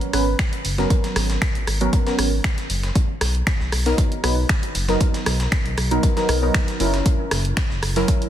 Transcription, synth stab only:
0, 0, Header, 1, 2, 480
1, 0, Start_track
1, 0, Tempo, 512821
1, 846, Time_signature, 4, 2, 24, 8
1, 7759, End_track
2, 0, Start_track
2, 0, Title_t, "Synth stab"
2, 0, Program_c, 0, 62
2, 0, Note_on_c, 0, 54, 85
2, 0, Note_on_c, 0, 59, 80
2, 0, Note_on_c, 0, 61, 79
2, 0, Note_on_c, 0, 70, 87
2, 98, Note_off_c, 0, 54, 0
2, 98, Note_off_c, 0, 59, 0
2, 99, Note_off_c, 0, 61, 0
2, 100, Note_off_c, 0, 70, 0
2, 123, Note_on_c, 0, 54, 74
2, 125, Note_on_c, 0, 59, 69
2, 126, Note_on_c, 0, 61, 65
2, 128, Note_on_c, 0, 71, 87
2, 239, Note_off_c, 0, 54, 0
2, 240, Note_off_c, 0, 59, 0
2, 241, Note_off_c, 0, 61, 0
2, 242, Note_off_c, 0, 71, 0
2, 729, Note_on_c, 0, 54, 84
2, 732, Note_on_c, 0, 59, 75
2, 735, Note_on_c, 0, 61, 74
2, 739, Note_on_c, 0, 70, 93
2, 1660, Note_off_c, 0, 54, 0
2, 1662, Note_off_c, 0, 59, 0
2, 1663, Note_off_c, 0, 61, 0
2, 1665, Note_off_c, 0, 70, 0
2, 1690, Note_on_c, 0, 54, 101
2, 1692, Note_on_c, 0, 59, 84
2, 1694, Note_on_c, 0, 61, 84
2, 1695, Note_on_c, 0, 70, 108
2, 1861, Note_off_c, 0, 54, 0
2, 1862, Note_off_c, 0, 59, 0
2, 1863, Note_off_c, 0, 61, 0
2, 1863, Note_off_c, 0, 70, 0
2, 1930, Note_on_c, 0, 54, 81
2, 1932, Note_on_c, 0, 59, 75
2, 1933, Note_on_c, 0, 61, 78
2, 1935, Note_on_c, 0, 70, 88
2, 2141, Note_off_c, 0, 54, 0
2, 2142, Note_off_c, 0, 59, 0
2, 2143, Note_off_c, 0, 61, 0
2, 2143, Note_off_c, 0, 70, 0
2, 3611, Note_on_c, 0, 54, 87
2, 3613, Note_on_c, 0, 59, 76
2, 3614, Note_on_c, 0, 63, 77
2, 3616, Note_on_c, 0, 70, 95
2, 3938, Note_off_c, 0, 54, 0
2, 3939, Note_off_c, 0, 59, 0
2, 3940, Note_off_c, 0, 63, 0
2, 3940, Note_off_c, 0, 70, 0
2, 3963, Note_on_c, 0, 54, 78
2, 3965, Note_on_c, 0, 59, 71
2, 3967, Note_on_c, 0, 63, 69
2, 3968, Note_on_c, 0, 71, 82
2, 4080, Note_off_c, 0, 54, 0
2, 4080, Note_off_c, 0, 59, 0
2, 4081, Note_off_c, 0, 63, 0
2, 4082, Note_off_c, 0, 71, 0
2, 4568, Note_on_c, 0, 54, 81
2, 4572, Note_on_c, 0, 59, 75
2, 4575, Note_on_c, 0, 63, 75
2, 4578, Note_on_c, 0, 70, 90
2, 5500, Note_off_c, 0, 54, 0
2, 5502, Note_off_c, 0, 59, 0
2, 5503, Note_off_c, 0, 63, 0
2, 5505, Note_off_c, 0, 70, 0
2, 5531, Note_on_c, 0, 54, 100
2, 5532, Note_on_c, 0, 59, 91
2, 5534, Note_on_c, 0, 63, 88
2, 5535, Note_on_c, 0, 70, 109
2, 5701, Note_off_c, 0, 54, 0
2, 5702, Note_off_c, 0, 59, 0
2, 5703, Note_off_c, 0, 63, 0
2, 5704, Note_off_c, 0, 70, 0
2, 5770, Note_on_c, 0, 54, 85
2, 5772, Note_on_c, 0, 59, 75
2, 5774, Note_on_c, 0, 63, 82
2, 5775, Note_on_c, 0, 70, 93
2, 5981, Note_off_c, 0, 54, 0
2, 5982, Note_off_c, 0, 59, 0
2, 5983, Note_off_c, 0, 63, 0
2, 5983, Note_off_c, 0, 70, 0
2, 6010, Note_on_c, 0, 54, 85
2, 6012, Note_on_c, 0, 59, 74
2, 6013, Note_on_c, 0, 63, 76
2, 6015, Note_on_c, 0, 70, 91
2, 6337, Note_off_c, 0, 54, 0
2, 6338, Note_off_c, 0, 59, 0
2, 6339, Note_off_c, 0, 63, 0
2, 6340, Note_off_c, 0, 70, 0
2, 6360, Note_on_c, 0, 54, 82
2, 6363, Note_on_c, 0, 61, 78
2, 6367, Note_on_c, 0, 64, 73
2, 6370, Note_on_c, 0, 70, 92
2, 7420, Note_off_c, 0, 54, 0
2, 7421, Note_off_c, 0, 61, 0
2, 7423, Note_off_c, 0, 64, 0
2, 7425, Note_off_c, 0, 70, 0
2, 7450, Note_on_c, 0, 54, 84
2, 7451, Note_on_c, 0, 61, 79
2, 7454, Note_on_c, 0, 64, 78
2, 7455, Note_on_c, 0, 70, 92
2, 7759, Note_off_c, 0, 54, 0
2, 7759, Note_off_c, 0, 61, 0
2, 7759, Note_off_c, 0, 64, 0
2, 7759, Note_off_c, 0, 70, 0
2, 7759, End_track
0, 0, End_of_file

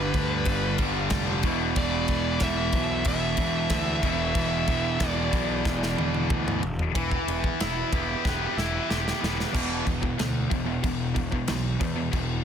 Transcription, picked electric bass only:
0, 0, Header, 1, 2, 480
1, 0, Start_track
1, 0, Key_signature, 1, "minor"
1, 0, Tempo, 648649
1, 1301, Time_signature, 4, 2, 24, 8
1, 9206, End_track
2, 0, Start_track
2, 0, Title_t, "Picked electric bass"
2, 0, Program_c, 0, 34
2, 0, Note_on_c, 0, 31, 91
2, 81, Note_off_c, 0, 31, 0
2, 107, Note_on_c, 0, 38, 95
2, 322, Note_off_c, 0, 38, 0
2, 345, Note_on_c, 0, 31, 95
2, 561, Note_off_c, 0, 31, 0
2, 589, Note_on_c, 0, 31, 100
2, 803, Note_off_c, 0, 31, 0
2, 825, Note_on_c, 0, 29, 92
2, 1041, Note_off_c, 0, 29, 0
2, 1061, Note_on_c, 0, 28, 93
2, 1278, Note_off_c, 0, 28, 0
2, 1309, Note_on_c, 0, 28, 103
2, 1522, Note_off_c, 0, 28, 0
2, 1549, Note_on_c, 0, 28, 86
2, 1762, Note_off_c, 0, 28, 0
2, 1783, Note_on_c, 0, 28, 107
2, 1999, Note_off_c, 0, 28, 0
2, 2019, Note_on_c, 0, 35, 101
2, 2236, Note_off_c, 0, 35, 0
2, 2262, Note_on_c, 0, 28, 97
2, 2478, Note_off_c, 0, 28, 0
2, 2501, Note_on_c, 0, 28, 104
2, 2717, Note_off_c, 0, 28, 0
2, 2738, Note_on_c, 0, 38, 94
2, 2955, Note_off_c, 0, 38, 0
2, 2988, Note_on_c, 0, 28, 93
2, 3201, Note_off_c, 0, 28, 0
2, 3218, Note_on_c, 0, 28, 92
2, 3435, Note_off_c, 0, 28, 0
2, 3464, Note_on_c, 0, 28, 97
2, 3678, Note_off_c, 0, 28, 0
2, 3708, Note_on_c, 0, 28, 97
2, 3920, Note_off_c, 0, 28, 0
2, 3941, Note_on_c, 0, 35, 95
2, 4156, Note_off_c, 0, 35, 0
2, 4185, Note_on_c, 0, 28, 93
2, 4398, Note_off_c, 0, 28, 0
2, 4427, Note_on_c, 0, 28, 91
2, 4639, Note_off_c, 0, 28, 0
2, 4665, Note_on_c, 0, 38, 90
2, 4878, Note_off_c, 0, 38, 0
2, 4908, Note_on_c, 0, 28, 89
2, 5120, Note_off_c, 0, 28, 0
2, 5148, Note_on_c, 0, 28, 93
2, 5300, Note_off_c, 0, 28, 0
2, 5387, Note_on_c, 0, 28, 86
2, 5539, Note_off_c, 0, 28, 0
2, 5637, Note_on_c, 0, 28, 100
2, 5786, Note_off_c, 0, 28, 0
2, 5867, Note_on_c, 0, 28, 88
2, 6019, Note_off_c, 0, 28, 0
2, 6108, Note_on_c, 0, 28, 86
2, 6260, Note_off_c, 0, 28, 0
2, 6345, Note_on_c, 0, 28, 88
2, 6498, Note_off_c, 0, 28, 0
2, 6592, Note_on_c, 0, 28, 81
2, 6743, Note_off_c, 0, 28, 0
2, 6833, Note_on_c, 0, 28, 89
2, 6984, Note_off_c, 0, 28, 0
2, 7065, Note_on_c, 0, 28, 90
2, 7258, Note_off_c, 0, 28, 0
2, 7306, Note_on_c, 0, 28, 75
2, 7498, Note_off_c, 0, 28, 0
2, 7546, Note_on_c, 0, 38, 93
2, 7739, Note_off_c, 0, 38, 0
2, 7780, Note_on_c, 0, 28, 85
2, 7975, Note_off_c, 0, 28, 0
2, 8020, Note_on_c, 0, 28, 85
2, 8411, Note_off_c, 0, 28, 0
2, 8508, Note_on_c, 0, 35, 89
2, 8701, Note_off_c, 0, 35, 0
2, 8739, Note_on_c, 0, 40, 82
2, 8936, Note_off_c, 0, 40, 0
2, 8977, Note_on_c, 0, 28, 93
2, 9175, Note_off_c, 0, 28, 0
2, 9206, End_track
0, 0, End_of_file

